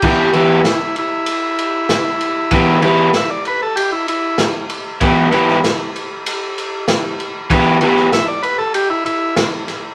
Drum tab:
CC |x---------------|----------------|----------------|----------------|
RD |--x-x-x-x-x-x-x-|x-x-x-x-x-x-x-x-|x-x-x-x-x-x-x-x-|x-x-x-x-x-x-x-x-|
SD |----o-------o---|----o-------o---|---oo-------o---|---oo-------o-o-|
BD |o---------------|o---------------|o---------------|o---------------|